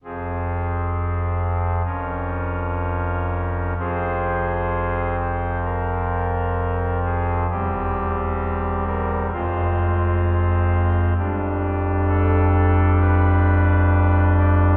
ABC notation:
X:1
M:4/4
L:1/8
Q:1/4=65
K:Fm
V:1 name="Pipe organ"
z8 | A3 c B3 A | G3 B c4 | z2 =A2 =B3 =d |]
V:2 name="Pipe organ" clef=bass
[F,,,F,,F,CA]4 [F,,,F,,F,DB]4 | [F,,,F,,F,Cc]8 | [=E,,,=E,,G,C]4 [F,,,F,,A,CF]4 | [F,,,F,,G,=DG]8 |]